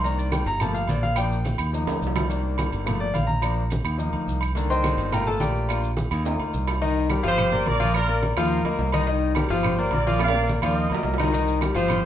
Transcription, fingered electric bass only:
0.00 0.41 C2 loud
0.46 0.86 G1 loud
0.88 1.54 A#1 loud
1.59 1.86 D#2 loud
1.88 2.01 D2 medium
2.02 2.67 C2 medium
2.73 3.12 G1 loud
3.15 3.80 A#1 loud
3.85 4.11 D#2 loud
4.13 4.26 D2 medium
4.28 4.93 C2 medium
4.97 5.37 G1 loud
5.40 6.06 A#1 medium
6.11 6.38 D#2 loud
6.40 6.53 D2 medium
6.54 7.19 C2 medium
7.24 7.64 G1 loud
7.66 8.32 A#1 loud
8.37 8.63 D#2 loud
8.65 8.78 D2 medium
8.79 9.44 C2 loud
9.50 9.89 G1 loud
9.93 10.58 A#1 loud
10.63 10.89 D#2 loud
10.91 11.04 D2 medium
11.04 11.70 C2 loud
11.75 12.05 G1 loud

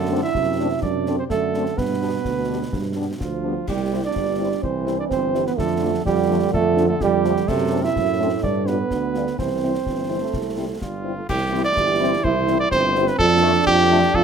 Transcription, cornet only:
0.00 0.21 A4 medium
0.23 0.78 E5 medium
0.82 1.15 D5 medium
1.19 1.24 C5 medium
1.30 1.80 A4 medium
1.78 2.93 B4 medium
3.20 3.64 F4 medium
3.68 4.01 G4 medium
4.05 4.60 D5 medium
4.64 4.96 C5 medium
4.99 5.04 D5 medium
5.11 5.44 C5 medium
5.47 5.52 B4 medium
5.59 6.03 A4 medium
6.06 6.50 G4 medium
6.53 6.86 A4 medium
6.88 7.03 A4 medium
7.02 7.50 G4 medium
7.48 7.85 A4 medium
7.83 8.42 E5 medium
8.43 8.68 D5 medium
8.67 9.38 B4 medium
9.39 10.64 C5 medium
10.81 11.25 F4 medium
11.29 11.62 G4 medium
11.64 12.25 D5 loud
12.24 12.59 C5 medium
12.60 12.70 D5 loud
12.71 13.09 C5 loud
13.08 13.18 B4 medium
13.18 13.63 A4 loud
13.66 14.16 G4 loud
14.15 14.24 A4 loud

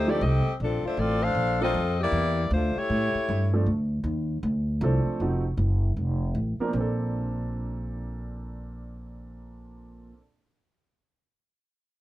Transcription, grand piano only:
0.07 0.20 F3 medium
0.07 0.20 A3 medium
0.07 0.20 D4 medium
0.07 0.20 D#4 medium
0.07 0.20 G4 medium
1.61 1.74 F3 medium
1.61 1.74 A#3 medium
1.61 1.74 C4 medium
1.61 1.74 D4 medium
1.61 1.74 A4 medium
3.53 3.65 F3 medium
3.53 3.66 A3 medium
3.53 3.66 C4 medium
3.53 3.66 D4 medium
3.53 3.66 A4 medium
4.82 5.19 F3 medium
4.82 5.20 A3 medium
4.82 5.20 C4 medium
4.82 5.21 D4 medium
4.82 5.21 A4 medium
5.21 5.42 F3 medium
5.21 5.43 A3 medium
5.21 5.43 C4 medium
5.21 5.43 D#4 medium
5.21 5.43 F#4 medium
6.60 6.73 F3 medium
6.60 6.70 A#3 medium
6.60 6.73 C4 medium
6.60 6.73 D4 medium
6.60 6.73 A#4 medium
6.69 10.10 A#2 medium
6.69 10.13 A#3 medium
6.74 10.16 C4 medium
6.74 10.19 D4 medium
6.80 10.22 A4 medium

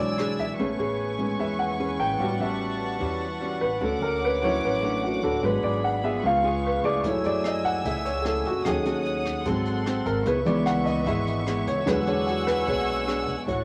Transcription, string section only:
0.00 0.57 D5 medium
0.00 0.57 G#5 medium
0.00 0.57 E6 medium
0.58 3.78 B4 medium
0.58 2.18 G#5 medium
0.58 3.78 C#6 medium
2.20 6.19 F#5 medium
2.20 3.79 A5 medium
3.79 5.40 C#4 medium
3.79 5.40 D6 medium
5.42 6.22 G#4 medium
5.42 6.22 B5 medium
6.24 7.03 B4 medium
6.24 7.03 F5 medium
6.24 7.03 C#6 medium
7.02 8.63 G#5 medium
7.02 8.63 E6 medium
8.65 9.45 C#5 medium
8.65 10.24 F#5 medium
8.65 9.44 D#6 medium
9.46 10.25 A4 medium
9.46 10.25 C6 medium
10.26 11.85 B4 medium
10.26 11.85 E5 medium
10.26 11.85 C#6 medium
11.88 13.47 F#5 medium
11.88 13.47 G#5 medium
11.88 13.47 C#6 medium
11.88 13.47 E6 medium
13.47 13.64 A3 medium
13.47 13.64 F#5 medium
13.47 13.64 C#6 medium

